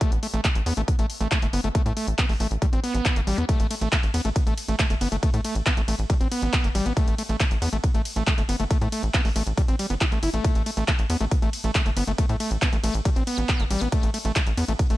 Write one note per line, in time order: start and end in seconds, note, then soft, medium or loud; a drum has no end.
0.01 0.11 A3 medium
0.01 kick loud
0.01 closed hi-hat medium
0.12 0.18 A1 medium
0.12 closed hi-hat medium
0.23 0.27 A3 medium
0.23 open hi-hat loud
0.34 0.40 A1 medium
0.34 0.41 A3 medium
0.34 closed hi-hat medium
0.44 0.49 A3 medium
0.44 kick loud
0.44 clap loud
0.44 closed hi-hat medium
0.55 0.62 A1 medium
0.55 closed hi-hat medium
0.66 0.73 E2 loud
0.66 0.73 B3 loud
0.66 open hi-hat loud
0.77 0.83 A1 medium
0.77 0.81 A3 loud
0.77 closed hi-hat medium
0.88 kick loud
0.88 closed hi-hat medium
0.99 1.05 A1 medium
0.99 1.06 A3 loud
0.99 closed hi-hat medium
1.10 open hi-hat loud
1.21 1.27 A1 medium
1.21 1.28 A3 medium
1.21 closed hi-hat medium
1.31 1.39 A3 medium
1.31 kick loud
1.31 clap loud
1.31 closed hi-hat medium
1.42 1.49 G1 medium
1.42 1.47 A3 medium
1.42 closed hi-hat medium
1.53 1.60 G1 loud
1.53 1.60 B3 loud
1.53 open hi-hat loud
1.64 1.70 G1 medium
1.64 1.68 A3 loud
1.64 closed hi-hat medium
1.75 1.82 A3 medium
1.75 kick loud
1.75 closed hi-hat medium
1.86 1.92 A2 medium
1.86 1.93 A3 medium
1.86 closed hi-hat medium
1.97 2.07 A3 medium
1.97 open hi-hat loud
2.08 2.14 A1 medium
2.08 closed hi-hat medium
2.18 2.26 B3 medium
2.18 kick loud
2.18 clap loud
2.18 closed hi-hat medium
2.29 2.36 A1 medium
2.29 2.34 A3 medium
2.29 open hi-hat medium
2.40 2.47 A1 medium
2.40 2.47 A3 medium
2.40 open hi-hat loud
2.51 2.57 A1 medium
2.51 closed hi-hat medium
2.62 2.66 G3 medium
2.62 kick loud
2.62 closed hi-hat medium
2.73 2.79 A1 medium
2.73 2.80 C4 medium
2.73 closed hi-hat medium
2.84 2.94 B3 loud
2.84 open hi-hat loud
2.94 3.01 A1 medium
2.94 3.18 B3 medium
2.94 closed hi-hat medium
3.05 kick loud
3.05 clap loud
3.05 closed hi-hat medium
3.16 3.23 G1 medium
3.16 3.21 A3 medium
3.16 closed hi-hat medium
3.27 3.33 A1 medium
3.27 3.37 G3 loud
3.27 open hi-hat loud
3.38 3.44 E2 medium
3.38 3.45 B3 medium
3.38 closed hi-hat medium
3.49 3.59 A3 medium
3.49 kick loud
3.49 closed hi-hat medium
3.49 ride medium
3.60 3.66 A1 medium
3.60 3.67 A3 medium
3.60 closed hi-hat medium
3.71 3.75 A3 medium
3.71 open hi-hat loud
3.71 ride medium
3.81 3.88 A1 medium
3.81 3.89 A3 medium
3.81 closed hi-hat medium
3.92 3.97 A3 medium
3.92 kick loud
3.92 clap loud
3.92 closed hi-hat medium
3.92 ride medium
4.03 4.10 A1 medium
4.03 closed hi-hat medium
4.14 4.20 E2 loud
4.14 4.21 B3 loud
4.14 open hi-hat loud
4.14 ride medium
4.25 4.31 A1 medium
4.25 4.29 A3 loud
4.25 closed hi-hat medium
4.36 kick loud
4.36 closed hi-hat medium
4.36 ride medium
4.47 4.53 A1 medium
4.47 4.54 A3 loud
4.47 closed hi-hat medium
4.58 open hi-hat loud
4.58 ride medium
4.68 4.75 A1 medium
4.68 4.76 A3 medium
4.68 closed hi-hat medium
4.79 4.87 A3 medium
4.79 kick loud
4.79 clap loud
4.79 closed hi-hat medium
4.79 ride medium
4.90 4.97 G1 medium
4.90 4.95 A3 medium
4.90 closed hi-hat medium
5.01 5.07 G1 loud
5.01 5.08 B3 loud
5.01 open hi-hat loud
5.01 ride medium
5.12 5.18 G1 medium
5.12 5.16 A3 loud
5.12 closed hi-hat medium
5.23 5.30 A3 medium
5.23 kick loud
5.23 closed hi-hat medium
5.23 ride medium
5.34 5.40 A2 medium
5.34 5.41 A3 medium
5.34 closed hi-hat medium
5.45 5.55 A3 medium
5.45 open hi-hat loud
5.45 ride medium
5.55 5.62 A1 medium
5.55 closed hi-hat medium
5.66 5.73 B3 medium
5.66 kick loud
5.66 clap loud
5.66 closed hi-hat medium
5.66 ride medium
5.77 5.83 A1 medium
5.77 5.81 A3 medium
5.77 closed hi-hat medium
5.88 5.94 A1 loud
5.88 5.95 A3 medium
5.88 open hi-hat loud
5.88 ride medium
5.99 6.05 A1 medium
5.99 closed hi-hat medium
6.10 6.14 G3 medium
6.10 kick loud
6.10 closed hi-hat medium
6.10 ride medium
6.21 6.27 A1 medium
6.21 6.28 C4 medium
6.21 closed hi-hat medium
6.32 6.42 B3 loud
6.32 open hi-hat loud
6.32 ride medium
6.42 6.49 A1 medium
6.42 6.66 B3 medium
6.42 closed hi-hat medium
6.53 kick loud
6.53 clap loud
6.53 closed hi-hat medium
6.53 ride medium
6.64 6.70 G1 medium
6.64 6.68 A3 medium
6.64 closed hi-hat medium
6.75 6.81 A1 loud
6.75 6.85 G3 loud
6.75 open hi-hat loud
6.75 ride medium
6.86 6.92 A1 medium
6.86 6.93 B3 medium
6.86 closed hi-hat medium
6.97 7.07 A3 medium
6.97 kick loud
6.97 closed hi-hat medium
6.97 ride medium
7.08 7.14 A1 medium
7.08 7.15 A3 medium
7.08 closed hi-hat medium
7.18 7.23 A3 medium
7.18 open hi-hat loud
7.18 ride medium
7.29 7.36 A1 medium
7.29 7.36 A3 medium
7.29 closed hi-hat medium
7.40 7.44 A3 medium
7.40 kick loud
7.40 clap loud
7.40 closed hi-hat medium
7.40 ride medium
7.51 7.57 A1 medium
7.51 closed hi-hat medium
7.62 7.68 E2 loud
7.62 7.69 B3 loud
7.62 open hi-hat loud
7.62 ride medium
7.73 7.79 A1 medium
7.73 7.77 A3 loud
7.73 closed hi-hat medium
7.84 kick loud
7.84 closed hi-hat medium
7.84 ride medium
7.94 8.01 A1 medium
7.94 8.02 A3 loud
7.94 closed hi-hat medium
8.05 open hi-hat loud
8.05 ride medium
8.16 8.23 A1 medium
8.16 8.23 A3 medium
8.16 closed hi-hat medium
8.27 8.34 A3 medium
8.27 kick loud
8.27 clap loud
8.27 closed hi-hat medium
8.27 ride medium
8.38 8.44 G1 medium
8.38 8.42 A3 medium
8.38 closed hi-hat medium
8.49 8.55 G1 medium
8.49 8.56 B3 loud
8.49 open hi-hat loud
8.49 ride medium
8.60 8.66 G1 medium
8.60 8.64 A3 loud
8.60 closed hi-hat medium
8.71 8.78 A3 medium
8.71 kick loud
8.71 closed hi-hat medium
8.71 ride medium
8.81 8.88 A2 medium
8.81 8.89 A3 medium
8.81 closed hi-hat soft
8.92 9.03 A3 medium
8.92 open hi-hat loud
8.92 ride medium
9.03 9.10 A1 medium
9.03 closed hi-hat soft
9.14 9.21 B3 medium
9.14 kick loud
9.14 clap loud
9.14 closed hi-hat medium
9.14 ride medium
9.25 9.31 A1 medium
9.25 9.29 A3 medium
9.25 open hi-hat medium
9.36 9.42 A1 loud
9.36 9.43 A3 medium
9.36 open hi-hat loud
9.36 ride medium
9.47 9.53 A1 medium
9.47 closed hi-hat medium
9.58 9.62 G3 medium
9.58 kick loud
9.58 closed hi-hat medium
9.58 ride medium
9.68 9.75 A1 medium
9.68 9.76 C4 medium
9.68 closed hi-hat medium
9.79 9.87 G3 medium
9.79 open hi-hat loud
9.79 ride medium
9.90 9.97 G1 medium
9.90 9.94 B3 medium
9.90 closed hi-hat soft
10.01 10.05 E4 medium
10.01 kick loud
10.01 clap loud
10.01 closed hi-hat medium
10.01 ride medium
10.12 10.18 A1 medium
10.12 10.19 A3 medium
10.12 closed hi-hat medium
10.23 10.29 G1 medium
10.23 10.30 E4 medium
10.23 open hi-hat loud
10.23 ride medium
10.34 10.40 A1 medium
10.34 10.44 A3 medium
10.34 closed hi-hat medium
10.44 10.55 A3 medium
10.44 kick loud
10.44 closed hi-hat medium
10.44 ride medium
10.55 10.62 A1 medium
10.55 10.63 A3 medium
10.55 closed hi-hat soft
10.66 10.71 A3 medium
10.66 open hi-hat loud
10.66 ride medium
10.77 10.83 A1 medium
10.77 10.84 A3 medium
10.77 closed hi-hat medium
10.88 10.92 A3 medium
10.88 kick loud
10.88 clap loud
10.88 closed hi-hat medium
10.88 ride medium
10.99 11.05 A1 medium
10.99 closed hi-hat medium
11.10 11.16 E2 medium
11.10 11.17 B3 loud
11.10 open hi-hat loud
11.10 ride medium
11.21 11.27 A1 medium
11.21 11.25 A3 loud
11.21 closed hi-hat medium
11.31 kick loud
11.31 closed hi-hat medium
11.31 ride medium
11.42 11.49 A1 medium
11.42 11.50 A3 loud
11.42 closed hi-hat medium
11.53 open hi-hat loud
11.53 ride medium
11.64 11.70 A1 medium
11.64 11.71 A3 medium
11.64 closed hi-hat medium
11.75 11.82 A3 medium
11.75 kick loud
11.75 clap loud
11.75 closed hi-hat medium
11.75 ride medium
11.86 11.92 G1 medium
11.86 11.90 A3 medium
11.86 closed hi-hat medium
11.97 12.03 G1 medium
11.97 12.04 B3 loud
11.97 open hi-hat loud
11.97 ride medium
12.08 12.14 G1 medium
12.08 12.12 A3 loud
12.08 closed hi-hat medium
12.18 12.26 A3 medium
12.18 kick loud
12.18 closed hi-hat medium
12.18 ride medium
12.29 12.36 A2 medium
12.29 12.36 A3 medium
12.29 closed hi-hat medium
12.40 12.50 A3 medium
12.40 open hi-hat loud
12.40 ride medium
12.51 12.57 A1 medium
12.51 closed hi-hat medium
12.62 12.69 B3 medium
12.62 kick loud
12.62 clap loud
12.62 closed hi-hat medium
12.62 ride medium
12.73 12.79 A1 medium
12.73 12.77 A3 medium
12.73 closed hi-hat medium
12.84 12.90 A1 loud
12.84 12.94 A3 loud
12.84 open hi-hat loud
12.84 ride medium
12.94 13.01 A1 medium
12.94 closed hi-hat medium
13.05 13.10 G3 medium
13.05 kick loud
13.05 closed hi-hat medium
13.05 ride medium
13.16 13.23 A1 medium
13.16 13.23 C4 medium
13.16 closed hi-hat medium
13.27 13.37 B3 loud
13.27 open hi-hat loud
13.27 ride medium
13.38 13.44 A1 medium
13.38 13.61 B3 medium
13.38 closed hi-hat medium
13.49 kick loud
13.49 clap loud
13.49 closed hi-hat medium
13.49 ride medium
13.60 13.66 G1 medium
13.60 13.64 A3 medium
13.60 closed hi-hat medium
13.71 13.77 A1 medium
13.71 13.81 G3 loud
13.71 open hi-hat loud
13.71 ride medium
13.81 13.88 A1 medium
13.81 13.89 B3 medium
13.81 closed hi-hat medium
13.92 14.03 A3 medium
13.92 kick loud
13.92 closed hi-hat medium
13.92 ride medium
14.03 14.10 A1 medium
14.03 14.10 A3 medium
14.03 closed hi-hat medium
14.14 14.18 A3 medium
14.14 open hi-hat loud
14.14 ride medium
14.25 14.31 A1 medium
14.25 14.32 A3 medium
14.25 closed hi-hat medium
14.36 14.40 A3 medium
14.36 kick loud
14.36 clap loud
14.36 closed hi-hat medium
14.36 ride medium
14.47 14.53 A1 medium
14.47 closed hi-hat medium
14.57 14.64 E2 loud
14.57 14.65 B3 loud
14.57 open hi-hat loud
14.57 ride medium
14.68 14.75 A1 medium
14.68 14.73 A3 loud
14.68 closed hi-hat medium
14.79 kick loud
14.79 closed hi-hat medium
14.79 ride medium
14.90 14.97 A1 medium
14.90 14.97 A3 loud
14.90 closed hi-hat medium